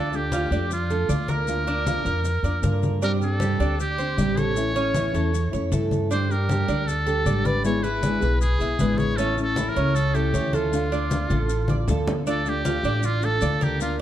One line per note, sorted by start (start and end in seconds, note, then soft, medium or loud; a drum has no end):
0.00 0.47 D2 medium
0.00 0.12 D3 medium
0.00 0.12 A3 medium
0.00 0.12 D4 medium
0.00 0.31 D4 medium
0.00 0.11 F4 medium
0.00 0.17 A4 medium
0.12 0.31 A3 soft
0.12 0.32 D4 soft
0.12 0.31 F4 soft
0.12 0.72 G4 medium
0.12 high conga soft
0.12 maracas soft
0.32 0.50 D3 medium
0.32 0.51 A3 medium
0.32 0.51 D4 medium
0.32 0.51 F4 medium
0.32 0.50 F4 medium
0.32 high conga medium
0.32 maracas medium
0.51 1.05 F2 medium
0.51 0.69 A3 soft
0.51 0.69 D4 soft
0.51 0.89 D4 medium
0.51 0.70 F4 soft
0.51 high conga soft
0.51 maracas soft
0.70 1.32 F4 medium
0.70 muted nylon-string guitar stroke medium
0.70 high conga soft
0.70 maracas medium
0.89 1.08 A3 soft
0.89 1.09 D4 soft
0.89 1.08 F4 soft
0.89 1.09 A4 medium
0.89 high conga soft
0.89 maracas soft
1.09 2.00 D2 medium
1.09 1.46 D3 medium
1.09 1.47 A3 medium
1.09 1.47 D4 medium
1.09 1.48 F4 medium
1.09 1.28 D5 medium
1.09 high conga medium
1.09 maracas medium
1.28 1.66 A#4 medium
1.28 2.84 A#4 medium
1.28 high conga medium
1.28 maracas soft
1.47 1.66 D3 medium
1.47 1.66 A#3 medium
1.47 1.67 D4 medium
1.47 1.65 F4 medium
1.47 high conga soft
1.47 maracas medium
1.66 1.85 A#3 soft
1.66 2.05 D4 medium
1.66 1.85 D4 soft
1.66 1.85 F4 soft
1.66 high conga soft
1.66 maracas soft
1.85 2.04 D3 medium
1.85 2.05 A#3 medium
1.85 2.05 D4 medium
1.85 2.04 F4 medium
1.85 high conga medium
1.85 maracas medium
2.05 2.41 F2 medium
2.05 2.23 A#3 soft
2.05 2.24 D4 soft
2.05 2.24 F4 soft
2.05 2.43 A#4 medium
2.05 high conga soft
2.05 maracas soft
2.24 muted nylon-string guitar stroke medium
2.24 high conga soft
2.24 maracas medium
2.43 2.61 F2 medium
2.43 2.62 A#3 soft
2.43 2.63 D4 soft
2.43 2.62 F4 soft
2.43 2.63 D5 medium
2.43 high conga soft
2.43 maracas soft
2.63 3.54 G2 medium
2.63 3.01 D3 medium
2.63 3.01 A#3 medium
2.63 3.01 D4 medium
2.63 3.02 F4 medium
2.63 3.01 A#4 medium
2.63 high conga medium
2.63 maracas medium
2.83 high conga medium
2.83 maracas soft
3.01 3.20 C3 medium
3.01 3.20 G3 medium
3.01 3.20 C4 medium
3.01 3.40 D4 medium
3.01 3.20 D4 medium
3.01 3.19 G4 medium
3.01 3.12 A#4 medium
3.01 high conga soft
3.01 maracas medium
3.20 3.39 C4 soft
3.20 3.40 D4 soft
3.20 3.39 G4 soft
3.20 3.76 A4 medium
3.20 high conga soft
3.20 maracas soft
3.39 3.58 C3 medium
3.39 3.59 G3 medium
3.39 3.59 C4 medium
3.39 3.59 D4 medium
3.39 3.59 G4 medium
3.39 3.58 G4 medium
3.39 high conga medium
3.39 maracas medium
3.59 4.13 D2 medium
3.59 3.78 C4 soft
3.59 3.97 D4 medium
3.59 3.78 D4 soft
3.59 3.78 G4 medium
3.59 high conga soft
3.59 maracas soft
3.78 4.39 G4 medium
3.78 muted nylon-string guitar stroke medium
3.78 high conga soft
3.78 maracas medium
3.98 4.17 C4 soft
3.98 4.17 D4 soft
3.98 4.17 G4 soft
3.98 4.17 C5 medium
3.98 high conga soft
3.98 maracas soft
4.17 5.08 A1 medium
4.17 4.55 C3 medium
4.17 4.55 G3 medium
4.17 4.55 C4 medium
4.17 4.56 D4 medium
4.17 4.56 G4 medium
4.17 4.37 D5 medium
4.17 high conga medium
4.17 maracas medium
4.37 4.75 A4 medium
4.37 5.64 C#5 loud
4.37 high conga medium
4.37 maracas soft
4.55 4.74 E3 medium
4.55 4.75 A3 medium
4.55 4.74 C#4 medium
4.55 4.73 E4 medium
4.55 high conga soft
4.55 maracas medium
4.75 4.94 A3 soft
4.75 4.94 C#4 soft
4.75 5.13 C#4 medium
4.75 4.94 E4 soft
4.75 high conga soft
4.75 maracas soft
4.94 5.13 E3 medium
4.94 5.13 A3 medium
4.94 5.14 C#4 medium
4.94 5.13 E4 medium
4.94 high conga medium
4.94 maracas medium
5.14 5.50 E2 medium
5.14 5.32 A3 soft
5.14 5.33 C#4 soft
5.14 5.32 E4 soft
5.14 5.52 A4 medium
5.14 high conga soft
5.14 maracas soft
5.33 muted nylon-string guitar stroke medium
5.33 high conga soft
5.33 maracas medium
5.51 5.71 F2 medium
5.51 5.71 A3 soft
5.51 5.71 C#4 soft
5.51 5.71 E4 soft
5.51 5.71 C#5 medium
5.51 high conga soft
5.51 maracas soft
5.72 6.62 G2 medium
5.72 6.09 E3 medium
5.72 6.10 A3 medium
5.72 6.10 C#4 medium
5.72 6.10 E4 medium
5.72 6.09 A4 medium
5.72 high conga medium
5.72 maracas medium
5.91 high conga medium
5.91 maracas soft
6.10 6.29 D3 medium
6.10 6.29 G3 medium
6.10 6.48 D4 medium
6.10 6.29 D4 medium
6.10 6.28 G4 medium
6.10 6.33 C5 medium
6.10 high conga soft
6.10 maracas medium
6.29 6.49 G3 soft
6.29 6.49 D4 soft
6.29 6.48 G4 medium
6.29 6.89 A#4 medium
6.29 high conga soft
6.29 maracas soft
6.49 6.67 D3 medium
6.49 6.68 G3 medium
6.49 6.68 D4 medium
6.49 6.68 G4 medium
6.49 6.67 G4 medium
6.49 high conga medium
6.49 maracas medium
6.68 7.22 D2 medium
6.68 6.87 G3 soft
6.68 7.06 D4 medium
6.68 6.87 D4 soft
6.68 6.87 G4 soft
6.68 high conga soft
6.68 maracas soft
6.87 7.47 A4 medium
6.87 muted nylon-string guitar stroke medium
6.87 high conga soft
6.87 maracas medium
7.06 7.25 G3 soft
7.06 7.26 D4 soft
7.06 7.25 G4 soft
7.06 7.25 A4 medium
7.06 high conga soft
7.06 maracas soft
7.25 8.16 G#1 medium
7.25 7.62 D3 medium
7.25 7.64 G3 medium
7.25 7.64 D4 medium
7.25 7.64 G4 medium
7.25 7.45 D5 medium
7.25 high conga medium
7.25 maracas medium
7.45 7.83 B4 medium
7.45 7.64 D5 loud
7.45 high conga medium
7.45 maracas soft
7.63 7.83 D3 medium
7.63 7.83 G#3 medium
7.63 7.83 B3 medium
7.63 7.83 E4 medium
7.63 7.81 G#4 medium
7.63 7.85 C#5 medium
7.63 high conga soft
7.63 maracas medium
7.83 8.02 B3 soft
7.83 8.21 E4 medium
7.83 8.02 G#4 soft
7.83 8.40 B4 loud
7.83 high conga soft
7.83 maracas soft
8.02 8.21 D3 medium
8.02 8.21 G#3 medium
8.02 8.22 B3 medium
8.02 8.21 E4 medium
8.02 8.19 G#4 medium
8.02 high conga medium
8.02 maracas medium
8.20 8.58 B1 medium
8.20 8.40 B3 soft
8.20 8.40 E4 soft
8.20 8.40 G#4 soft
8.20 8.60 B4 medium
8.20 high conga soft
8.20 maracas soft
8.40 9.00 G#4 medium
8.40 muted nylon-string guitar stroke medium
8.40 high conga soft
8.40 maracas medium
8.59 8.79 B1 medium
8.59 8.78 B3 soft
8.59 8.79 E4 soft
8.59 8.78 G#4 soft
8.59 8.80 E5 medium
8.59 high conga soft
8.59 maracas soft
8.78 9.70 A1 medium
8.78 9.17 D3 medium
8.78 9.17 G#3 medium
8.78 9.18 B3 medium
8.78 9.18 E4 medium
8.78 9.18 G#4 medium
8.78 9.18 B4 medium
8.78 high conga medium
8.78 maracas medium
8.98 9.18 C#5 medium
8.98 high conga medium
8.98 maracas soft
9.17 9.37 E3 medium
9.17 9.37 A3 medium
9.17 9.56 C#4 medium
9.17 9.38 C#4 medium
9.17 9.36 E4 medium
9.17 9.37 A4 medium
9.17 high conga soft
9.17 maracas medium
9.37 9.57 A3 soft
9.37 9.57 C#4 soft
9.37 9.56 E4 soft
9.37 high conga soft
9.37 maracas soft
9.43 9.70 A4 medium
9.56 9.75 E3 medium
9.56 9.76 A3 medium
9.56 9.76 C#4 medium
9.56 9.76 E4 medium
9.56 9.75 E4 medium
9.56 high conga medium
9.56 maracas medium
9.69 9.97 A#4 medium
9.76 10.30 C#2 medium
9.76 9.95 A3 soft
9.76 10.14 C#4 medium
9.76 9.96 C#4 soft
9.76 9.95 E4 soft
9.76 high conga soft
9.76 maracas soft
9.95 10.16 A4 medium
9.95 muted nylon-string guitar stroke medium
9.95 high conga soft
9.95 maracas medium
10.14 10.33 A3 soft
10.14 10.33 C#4 soft
10.14 10.33 E4 soft
10.14 10.56 G4 medium
10.14 10.34 A4 medium
10.14 high conga soft
10.14 maracas soft
10.33 11.25 D2 medium
10.33 10.71 E3 medium
10.33 10.72 A3 medium
10.33 10.72 C#4 medium
10.33 10.72 E4 medium
10.33 10.53 C#5 medium
10.33 high conga medium
10.33 maracas medium
10.53 11.89 F4 medium
10.53 10.91 A4 medium
10.53 high conga medium
10.53 maracas soft
10.72 10.91 D3 medium
10.72 10.91 A3 medium
10.72 10.91 D4 medium
10.72 10.90 F4 medium
10.72 high conga soft
10.72 maracas medium
10.91 11.10 A3 soft
10.91 11.29 D4 medium
10.91 11.10 D4 soft
10.91 11.10 F4 soft
10.91 high conga soft
10.91 maracas soft
11.10 11.29 D3 medium
11.10 11.30 A3 medium
11.10 11.30 D4 medium
11.10 11.28 F4 medium
11.10 high conga medium
11.10 maracas medium
11.29 11.84 A1 medium
11.29 11.48 A3 soft
11.29 11.48 D4 soft
11.29 11.48 F4 soft
11.29 11.68 A4 medium
11.29 high conga medium
11.29 maracas soft
11.48 muted nylon-string guitar stroke medium
11.48 maracas medium
11.68 11.87 A3 soft
11.68 11.88 D4 soft
11.68 11.87 F4 soft
11.68 11.88 D5 medium
11.68 high conga loud
11.68 maracas soft
11.87 12.78 D2 medium
11.87 12.24 D3 medium
11.87 12.25 A3 medium
11.87 12.26 D4 medium
11.87 12.27 F4 medium
11.87 12.26 A4 medium
11.87 low conga medium
11.87 maracas medium
12.07 low conga medium
12.07 maracas soft
12.25 12.45 D3 medium
12.25 12.45 A3 medium
12.25 12.64 D4 medium
12.25 12.45 D4 medium
12.25 12.44 F4 medium
12.25 12.50 A4 medium
12.25 high conga soft
12.25 maracas medium
12.45 12.63 A3 soft
12.45 12.64 D4 soft
12.45 12.64 F4 soft
12.45 13.07 G4 loud
12.45 high conga soft
12.45 maracas soft
12.64 12.83 D3 medium
12.64 12.83 A3 medium
12.64 12.83 D4 medium
12.64 12.84 F4 medium
12.64 12.82 F4 medium
12.64 high conga medium
12.64 maracas medium
12.83 13.38 A1 medium
12.83 13.02 A3 soft
12.83 13.02 D4 soft
12.83 13.22 D4 medium
12.83 13.02 F4 soft
12.83 high conga soft
12.83 maracas soft
13.02 13.26 F4 medium
13.02 muted nylon-string guitar stroke medium
13.02 high conga soft
13.02 maracas medium
13.20 13.40 A3 soft
13.20 13.40 D4 soft
13.20 13.40 F4 soft
13.20 13.42 A4 medium
13.20 high conga soft
13.20 maracas soft
13.25 13.65 A4 medium
13.40 14.01 D2 medium
13.40 13.78 D3 medium
13.40 13.79 A3 medium
13.40 13.80 D4 medium
13.40 13.80 F4 medium
13.40 13.61 D5 medium
13.40 high conga medium
13.40 maracas medium
13.61 13.81 G4 medium
13.61 13.99 A#4 medium
13.61 high conga medium
13.61 maracas soft
13.80 13.99 D3 medium
13.80 13.99 A#3 medium
13.80 14.00 D4 medium
13.80 13.99 F4 medium
13.80 13.98 F4 medium
13.80 high conga soft
13.80 maracas medium